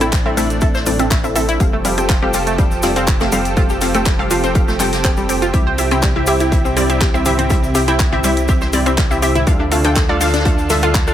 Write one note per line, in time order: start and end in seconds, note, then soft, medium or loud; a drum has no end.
0.00 1.58 A1 medium
0.00 1.56 A3 medium
0.00 9.43 C4 medium
0.00 0.07 C4 medium
0.00 1.58 D4 medium
0.00 0.07 E4 medium
0.00 0.11 E4 loud
0.00 0.07 A4 medium
0.00 0.07 G5 medium
0.00 closed hi-hat medium
0.00 closed hi-hat soft
0.00 cabasa soft
0.12 kick loud
0.12 snare loud
0.12 clap loud
0.12 closed hi-hat medium
0.12 cabasa medium
0.25 0.29 C4 medium
0.25 0.32 C4 loud
0.25 0.32 E4 medium
0.25 0.32 A4 medium
0.25 0.32 E5 loud
0.25 closed hi-hat soft
0.25 high conga medium
0.37 0.44 A3 medium
0.37 0.44 C4 medium
0.37 0.44 E4 medium
0.37 0.44 A4 medium
0.37 0.44 E5 loud
0.37 closed hi-hat medium
0.37 open hi-hat loud
0.37 cabasa medium
0.50 closed hi-hat medium
0.50 cabasa soft
0.61 0.68 C4 medium
0.61 0.68 E4 medium
0.61 0.66 A4 medium
0.61 0.68 A4 medium
0.61 0.68 E5 medium
0.61 kick loud
0.61 closed hi-hat medium
0.61 cabasa medium
0.75 0.81 C5 medium
0.75 snare soft
0.75 cabasa soft
0.86 0.97 C4 medium
0.86 0.97 E4 medium
0.86 0.97 A4 medium
0.86 0.97 D5 loud
0.86 closed hi-hat medium
0.86 open hi-hat loud
0.86 high conga medium
0.86 cabasa loud
0.99 1.06 C4 medium
0.99 1.05 C4 medium
0.99 1.05 E4 medium
0.99 1.05 A4 medium
0.99 1.05 E5 medium
0.99 closed hi-hat medium
0.99 cabasa soft
1.11 1.15 A3 medium
1.11 kick loud
1.11 snare loud
1.11 clap loud
1.11 closed hi-hat medium
1.11 cabasa medium
1.23 1.30 C4 medium
1.23 1.30 E4 medium
1.23 1.30 A4 medium
1.23 1.30 E5 loud
1.23 closed hi-hat soft
1.23 cabasa soft
1.35 1.42 C4 medium
1.35 1.42 E4 medium
1.35 1.46 A4 medium
1.35 1.42 A4 medium
1.35 1.42 E5 loud
1.35 closed hi-hat medium
1.35 open hi-hat medium
1.35 cabasa loud
1.49 1.58 E4 loud
1.49 closed hi-hat medium
1.49 cabasa soft
1.60 5.51 F1 medium
1.60 5.50 F3 medium
1.60 1.71 C4 medium
1.60 1.71 G4 medium
1.60 9.43 G4 medium
1.60 1.71 A4 medium
1.60 5.50 A4 medium
1.60 1.71 F5 loud
1.60 kick loud
1.60 closed hi-hat medium
1.60 closed hi-hat soft
1.60 high conga medium
1.60 cabasa medium
1.73 1.77 A3 medium
1.85 1.92 G3 medium
1.85 1.95 C4 medium
1.85 1.95 G4 medium
1.85 1.95 A4 medium
1.85 1.95 F5 medium
1.85 closed hi-hat medium
1.85 open hi-hat loud
1.85 cabasa medium
1.98 2.04 C4 medium
1.98 2.04 G4 medium
1.98 2.04 A4 medium
1.98 2.04 G5 medium
1.98 closed hi-hat soft
1.98 closed hi-hat medium
1.98 cabasa soft
2.09 2.14 F4 medium
2.09 kick loud
2.09 snare loud
2.09 clap loud
2.09 closed hi-hat medium
2.09 closed hi-hat soft
2.09 cabasa medium
2.22 2.28 C4 loud
2.22 2.28 G4 medium
2.22 2.29 G4 medium
2.22 2.28 A4 medium
2.22 2.28 F5 loud
2.22 high conga medium
2.33 2.41 C4 medium
2.33 2.41 G4 medium
2.33 2.41 A4 medium
2.33 2.41 F5 loud
2.33 closed hi-hat medium
2.33 open hi-hat loud
2.33 cabasa loud
2.47 2.53 A3 medium
2.47 closed hi-hat medium
2.47 cabasa soft
2.58 2.63 G3 medium
2.58 2.65 C4 medium
2.58 2.65 G4 medium
2.58 2.65 A4 medium
2.58 2.65 F5 medium
2.58 kick loud
2.58 closed hi-hat medium
2.58 closed hi-hat soft
2.58 cabasa medium
2.71 closed hi-hat soft
2.71 cabasa soft
2.83 2.94 C4 loud
2.83 2.94 F4 medium
2.83 2.94 G4 medium
2.83 2.94 A4 medium
2.83 2.94 D5 loud
2.83 snare medium
2.83 closed hi-hat medium
2.83 open hi-hat loud
2.83 high conga medium
2.83 cabasa medium
2.96 3.06 C4 loud
2.96 3.02 C4 medium
2.96 3.02 G4 medium
2.96 3.02 A4 medium
2.96 3.02 F5 medium
2.96 closed hi-hat soft
2.96 closed hi-hat medium
2.96 cabasa soft
3.07 kick loud
3.07 clap loud
3.07 closed hi-hat medium
3.07 cabasa soft
3.20 3.25 A3 medium
3.20 3.27 C4 medium
3.20 3.27 G4 medium
3.20 3.27 A4 medium
3.20 3.27 F5 loud
3.20 snare loud
3.20 closed hi-hat medium
3.20 cabasa soft
3.32 3.40 G3 medium
3.32 3.39 C4 loud
3.32 3.39 G4 medium
3.32 3.39 A4 medium
3.32 3.39 F5 loud
3.32 closed hi-hat soft
3.32 open hi-hat loud
3.32 cabasa medium
3.45 closed hi-hat medium
3.45 cabasa soft
3.57 3.68 C4 medium
3.57 3.61 F4 medium
3.57 3.68 G4 medium
3.57 3.68 A4 medium
3.57 3.68 F5 loud
3.57 kick loud
3.57 closed hi-hat soft
3.57 closed hi-hat medium
3.57 high conga medium
3.57 cabasa medium
3.69 3.76 G4 medium
3.69 cabasa soft
3.81 3.92 C4 medium
3.81 3.92 G4 medium
3.81 3.92 A4 medium
3.81 3.92 F5 medium
3.81 snare soft
3.81 closed hi-hat medium
3.81 open hi-hat loud
3.81 cabasa medium
3.94 4.01 A3 medium
3.94 4.00 C4 medium
3.94 4.00 G4 medium
3.94 4.00 A4 medium
3.94 4.00 G5 medium
3.94 closed hi-hat soft
3.94 closed hi-hat medium
3.94 cabasa soft
4.05 4.10 G3 medium
4.05 kick loud
4.05 snare loud
4.05 clap loud
4.05 closed hi-hat soft
4.05 closed hi-hat medium
4.05 cabasa medium
4.19 4.25 C4 loud
4.19 4.25 G4 medium
4.19 4.25 A4 medium
4.19 4.25 F5 loud
4.19 closed hi-hat soft
4.19 high conga medium
4.31 4.37 C4 medium
4.31 4.41 F4 medium
4.31 4.37 G4 medium
4.31 4.37 A4 medium
4.31 4.37 F5 medium
4.31 closed hi-hat medium
4.31 open hi-hat loud
4.31 cabasa loud
4.44 4.53 C4 loud
4.44 closed hi-hat medium
4.44 cabasa soft
4.55 4.62 C4 medium
4.55 4.62 G4 medium
4.55 4.62 A4 medium
4.55 4.62 F5 medium
4.55 kick loud
4.55 closed hi-hat medium
4.55 closed hi-hat soft
4.55 cabasa medium
4.68 4.72 A3 medium
4.68 snare soft
4.68 cabasa soft
4.80 4.91 C4 medium
4.80 4.91 G4 medium
4.80 4.91 A4 medium
4.80 4.84 A4 medium
4.80 4.91 G5 medium
4.80 snare medium
4.80 clap medium
4.80 closed hi-hat medium
4.80 open hi-hat loud
4.80 high conga medium
4.80 cabasa medium
4.93 snare loud
4.93 closed hi-hat medium
4.93 cabasa soft
5.04 5.11 C4 medium
5.04 5.11 G4 medium
5.04 5.11 A4 medium
5.04 5.09 C5 medium
5.04 5.11 G5 medium
5.04 kick loud
5.04 snare loud
5.04 clap loud
5.04 closed hi-hat medium
5.04 closed hi-hat soft
5.04 cabasa medium
5.17 5.24 G3 medium
5.17 closed hi-hat soft
5.17 cabasa soft
5.29 5.36 C4 medium
5.29 5.36 G4 medium
5.29 5.36 A4 medium
5.29 5.36 G5 medium
5.29 closed hi-hat medium
5.29 open hi-hat loud
5.29 cabasa medium
5.42 5.48 F4 loud
5.42 closed hi-hat medium
5.42 cabasa soft
5.54 9.45 C2 medium
5.54 9.43 C3 medium
5.54 5.64 C4 medium
5.54 9.43 E4 medium
5.54 5.64 E4 medium
5.54 5.64 G4 medium
5.54 5.58 G4 medium
5.54 5.64 E5 loud
5.54 kick loud
5.54 closed hi-hat soft
5.54 closed hi-hat medium
5.54 high conga medium
5.54 cabasa soft
5.67 5.73 C5 medium
5.78 5.89 C4 medium
5.78 5.89 E4 medium
5.78 5.89 G4 medium
5.78 5.89 E5 medium
5.78 closed hi-hat medium
5.78 open hi-hat loud
5.78 cabasa medium
5.91 5.98 C4 medium
5.91 5.97 C4 medium
5.91 5.97 E4 medium
5.91 5.97 G4 medium
5.91 5.97 G5 loud
5.91 closed hi-hat soft
5.91 closed hi-hat medium
5.91 cabasa soft
6.02 6.07 G3 medium
6.02 kick loud
6.02 snare loud
6.02 clap loud
6.02 closed hi-hat medium
6.02 closed hi-hat soft
6.02 cabasa medium
6.16 6.22 C4 loud
6.16 6.22 E4 medium
6.16 6.22 G4 medium
6.16 6.22 E5 loud
6.16 high conga medium
6.26 6.34 C4 medium
6.26 6.34 E4 medium
6.26 6.38 G4 medium
6.26 6.34 G4 medium
6.26 6.34 E5 loud
6.26 closed hi-hat medium
6.26 open hi-hat loud
6.26 cabasa loud
6.40 6.50 E4 medium
6.40 closed hi-hat medium
6.40 cabasa soft
6.52 6.59 C4 medium
6.52 6.59 E4 medium
6.52 6.59 G4 medium
6.52 6.59 E5 medium
6.52 kick loud
6.52 closed hi-hat soft
6.52 closed hi-hat medium
6.52 cabasa soft
6.65 6.69 C4 medium
6.65 closed hi-hat soft
6.65 cabasa soft
6.77 6.84 G3 medium
6.77 6.87 C4 medium
6.77 6.87 E4 medium
6.77 6.87 G4 medium
6.77 6.87 D5 loud
6.77 closed hi-hat medium
6.77 open hi-hat medium
6.77 high conga medium
6.77 cabasa medium
6.90 6.96 C4 medium
6.90 6.96 E4 medium
6.90 6.96 G4 medium
6.90 6.96 E5 medium
6.90 closed hi-hat medium
6.90 cabasa soft
7.00 7.05 G4 medium
7.00 kick loud
7.00 snare loud
7.00 clap loud
7.00 closed hi-hat medium
7.00 closed hi-hat soft
7.00 cabasa medium
7.14 7.20 C4 medium
7.14 7.20 E4 medium
7.14 7.20 G4 medium
7.14 7.20 C5 medium
7.14 7.20 E5 loud
7.14 cabasa soft
7.25 7.32 C4 loud
7.25 7.32 E4 medium
7.25 7.32 G4 medium
7.25 7.32 E5 loud
7.25 closed hi-hat medium
7.25 open hi-hat medium
7.25 low conga medium
7.25 cabasa medium
7.39 7.45 C4 medium
7.39 closed hi-hat medium
7.39 low conga medium
7.39 cabasa soft
7.50 7.55 G3 medium
7.50 7.61 C4 medium
7.50 7.61 E4 medium
7.50 7.61 G4 medium
7.50 7.61 E5 loud
7.50 kick loud
7.50 closed hi-hat soft
7.50 closed hi-hat medium
7.50 high conga medium
7.50 cabasa medium
7.64 cabasa soft
7.75 7.86 C4 medium
7.75 7.86 E4 medium
7.75 7.86 G4 medium
7.75 7.86 E5 medium
7.75 snare medium
7.75 closed hi-hat medium
7.75 open hi-hat medium
7.75 cabasa medium
7.87 7.94 C4 medium
7.87 7.97 E4 loud
7.87 7.94 E4 medium
7.87 7.94 G4 medium
7.87 7.94 G5 medium
7.87 closed hi-hat soft
7.87 closed hi-hat medium
7.87 cabasa soft
7.99 kick loud
7.99 snare loud
7.99 clap loud
7.99 closed hi-hat medium
7.99 cabasa medium
8.12 8.18 C4 loud
8.12 8.16 C4 medium
8.12 8.18 E4 medium
8.12 8.18 G4 medium
8.12 8.18 E5 loud
8.12 closed hi-hat soft
8.12 high conga medium
8.12 low conga medium
8.24 8.31 G3 medium
8.24 8.31 C4 medium
8.24 8.31 E4 medium
8.24 8.31 G4 medium
8.24 8.31 E5 loud
8.24 closed hi-hat medium
8.24 open hi-hat loud
8.24 cabasa medium
8.37 closed hi-hat medium
8.37 cabasa soft
8.48 8.55 C4 medium
8.48 8.55 E4 medium
8.48 8.55 G4 medium
8.48 8.53 G4 medium
8.48 8.55 E5 medium
8.48 kick loud
8.48 closed hi-hat medium
8.48 closed hi-hat soft
8.48 cabasa soft
8.61 8.68 C5 medium
8.61 snare soft
8.61 cabasa soft
8.73 8.84 C4 loud
8.73 8.84 E4 medium
8.73 8.84 G4 medium
8.73 8.84 D5 loud
8.73 closed hi-hat medium
8.73 open hi-hat loud
8.73 high conga medium
8.73 cabasa medium
8.86 8.93 C4 medium
8.86 8.92 C4 medium
8.86 8.92 E4 medium
8.86 8.92 G4 medium
8.86 8.92 E5 medium
8.86 closed hi-hat medium
8.86 cabasa soft
8.98 9.02 G3 medium
8.98 kick loud
8.98 snare loud
8.98 clap loud
8.98 closed hi-hat medium
8.98 cabasa soft
9.11 9.17 C4 medium
9.11 9.17 E4 medium
9.11 9.17 G4 medium
9.11 9.17 E5 loud
9.11 closed hi-hat soft
9.11 cabasa soft
9.22 9.29 C4 medium
9.22 9.29 E4 medium
9.22 9.29 G4 medium
9.22 9.33 G4 medium
9.22 9.29 E5 loud
9.22 closed hi-hat medium
9.22 open hi-hat loud
9.22 cabasa medium
9.35 9.45 E4 loud
9.35 closed hi-hat medium
9.35 low conga medium
9.35 cabasa soft
9.47 11.14 D2 medium
9.47 11.14 D3 medium
9.47 9.58 D4 medium
9.47 11.14 D4 medium
9.47 9.58 F4 medium
9.47 11.14 F4 medium
9.47 9.58 A4 medium
9.47 11.14 A4 medium
9.47 9.58 F5 loud
9.47 kick loud
9.47 closed hi-hat medium
9.47 high conga medium
9.47 cabasa soft
9.60 9.64 D4 medium
9.71 9.79 A3 medium
9.71 9.82 D4 medium
9.71 9.82 F4 medium
9.71 9.82 A4 medium
9.71 9.82 F5 medium
9.71 closed hi-hat medium
9.71 open hi-hat loud
9.71 cabasa medium
9.84 9.91 D4 medium
9.84 9.91 F4 medium
9.84 9.91 A4 medium
9.84 9.91 G5 loud
9.84 closed hi-hat medium
9.84 closed hi-hat soft
9.84 cabasa soft
9.96 10.00 A4 medium
9.96 kick loud
9.96 snare loud
9.96 clap loud
9.96 closed hi-hat medium
9.96 closed hi-hat soft
9.96 cabasa medium
10.09 10.15 D4 loud
10.09 10.15 F4 medium
10.09 10.15 A4 medium
10.09 10.16 D5 medium
10.09 10.15 F5 loud
10.09 high conga medium
10.21 10.27 D4 medium
10.21 10.27 F4 medium
10.21 10.27 A4 medium
10.21 10.27 F5 loud
10.21 snare medium
10.21 closed hi-hat medium
10.21 open hi-hat loud
10.21 cabasa medium
10.27 snare medium
10.27 closed hi-hat medium
10.34 10.40 D4 medium
10.34 snare medium
10.34 closed hi-hat medium
10.34 cabasa soft
10.39 snare medium
10.39 closed hi-hat medium
10.45 10.50 A3 medium
10.45 10.52 D4 medium
10.45 10.52 F4 medium
10.45 10.52 A4 medium
10.45 10.52 F5 medium
10.45 kick loud
10.45 closed hi-hat medium
10.45 cabasa soft
10.58 closed hi-hat soft
10.58 cabasa soft
10.70 10.81 D4 medium
10.70 10.81 F4 medium
10.70 10.81 A4 medium
10.70 10.81 E5 loud
10.70 snare loud
10.70 closed hi-hat medium
10.70 open hi-hat medium
10.70 high conga medium
10.70 cabasa medium
10.82 10.89 D4 medium
10.82 10.92 F4 loud
10.82 10.89 F4 medium
10.82 10.89 A4 medium
10.82 10.89 F5 medium
10.82 closed hi-hat medium
10.82 cabasa soft
10.94 kick loud
10.94 snare loud
10.94 clap loud
10.94 closed hi-hat medium
10.94 cabasa soft
11.07 11.13 D4 medium
11.07 11.11 D4 medium
11.07 11.13 F4 medium
11.07 11.13 A4 medium
11.07 11.13 F5 loud
11.07 cabasa soft